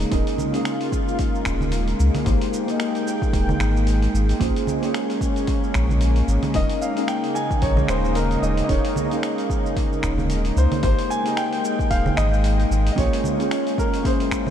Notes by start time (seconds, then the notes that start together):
Already playing: C#3 G#3 A#3
0.01 cabasa
0.11 D#1 C#4 D#4 F4 G#4 A#4 D#5, kick, open hi-hat, cabasa
0.27 open hi-hat, cabasa
0.38 low conga, cabasa
0.52 C#4 D#4 G#4 A#4, open hi-hat, cabasa
0.56 F5
0.65 finger snap, open hi-hat, cabasa
0.81 open hi-hat, cabasa
0.92 kick, cabasa
1.08 cabasa
1.19 kick, open hi-hat, cabasa
1.35 cabasa
1.45 D#1, finger snap, kick, cabasa
1.61 low conga, cabasa
1.72 open hi-hat, cabasa
1.88 open hi-hat, cabasa
2.00 C#2, cabasa
2.15 open hi-hat, low conga, cabasa
2.25 G#1 A#3 D#4 G4 G#4 C5 G5, kick, open hi-hat, cabasa
2.41 open hi-hat, cabasa
2.53 cabasa
2.66 A#3 D#4 G4 G#4, open hi-hat, cabasa
2.70 D#5
2.80 finger snap, open hi-hat, cabasa
2.95 open hi-hat, cabasa
3.07 cabasa
3.22 kick, cabasa
3.33 D#1, kick, open hi-hat, cabasa
3.49 low conga, cabasa
3.60 G#1, finger snap, cabasa
3.77 cabasa
3.87 open hi-hat, cabasa
4.02 open hi-hat, cabasa
4.14 G#1, cabasa
4.29 open hi-hat, cabasa
4.40 A#1 A#3 C#4 F4 G#4 C5, kick, open hi-hat, cabasa
4.56 open hi-hat, cabasa
4.67 low conga, cabasa
4.81 A#3 C#4 F4 G#4, open hi-hat, cabasa
4.85 C#5
4.94 finger snap, open hi-hat, cabasa
5.10 open hi-hat, cabasa
5.21 kick, cabasa
5.36 open hi-hat, cabasa
5.47 kick, open hi-hat, cabasa
5.64 cabasa
5.74 A#1, finger snap, kick, cabasa
5.90 low conga, cabasa
6.01 open hi-hat, cabasa
6.16 open hi-hat, cabasa
6.28 G#1, cabasa
6.43 open hi-hat, low conga, cabasa
6.54 D#1 C#3 C#4 D#4 G#4 A#4 D#5, kick, open hi-hat, cabasa
6.70 open hi-hat, cabasa
6.82 F5, cabasa
6.96 C#4 D#4 G#4 A#4, open hi-hat, cabasa
7.00 F5
7.08 G5, finger snap, open hi-hat, cabasa
7.24 open hi-hat, cabasa
7.35 G#5, cabasa
7.51 kick, cabasa
7.62 A#1 C#5, kick, open hi-hat, cabasa
7.77 low conga, cabasa
7.88 D#1 C5, finger snap, cabasa
8.05 cabasa
8.15 A#4, open hi-hat, cabasa
8.31 open hi-hat, cabasa
8.42 D#1 D#5, cabasa
8.57 open hi-hat, cabasa
8.64 D#5
8.69 D#1 C#4 D#4 G#4 A#4 C#5 D#5, kick, open hi-hat, cabasa
8.85 open hi-hat, cabasa
8.96 low conga, cabasa
9.10 C#4 D#4 G#4 A#4 F5, open hi-hat, cabasa
9.23 finger snap, open hi-hat, cabasa
9.38 open hi-hat, cabasa
9.50 kick, cabasa
9.66 cabasa
9.77 kick, open hi-hat, cabasa
9.93 cabasa
10.03 D#1, finger snap, kick, cabasa
10.18 low conga, cabasa
10.30 open hi-hat, cabasa
10.45 open hi-hat, cabasa
10.56 C#2 C5, cabasa
10.72 open hi-hat, low conga, cabasa
10.83 G#1 G#3 A#3 D#4 G4 G#4 C5 G5, kick, open hi-hat, cabasa
10.99 open hi-hat, cabasa
11.10 G#5, cabasa
11.24 A#3 D#4 G4 G#4, open hi-hat, cabasa
11.28 D#5
11.37 G5, finger snap, open hi-hat, cabasa
11.53 open hi-hat, cabasa
11.65 cabasa
11.79 kick, cabasa
11.90 D#1 F5, kick, open hi-hat, cabasa
12.06 low conga, cabasa
12.17 G#1 D#5, finger snap, cabasa
12.33 cabasa
12.44 open hi-hat, cabasa
12.60 open hi-hat, cabasa
12.71 G#1, cabasa
12.87 open hi-hat, cabasa
12.92 D#5
12.96 A#1 A#3 C#4 F4 G#4 C#5, kick, open hi-hat, cabasa
13.13 open hi-hat, cabasa
13.24 low conga, cabasa
13.38 A#3 C#4 F4 G#4, open hi-hat, cabasa
13.42 C#5
13.51 finger snap, open hi-hat, cabasa
13.67 open hi-hat, cabasa
13.78 A#4, kick, cabasa
13.94 open hi-hat, cabasa
14.03 C#3 G#3 A#3 C#4 E4 G#4 C5, kick, open hi-hat, cabasa
14.07 C5
14.20 open hi-hat, cabasa
14.31 finger snap, kick, cabasa
14.47 low conga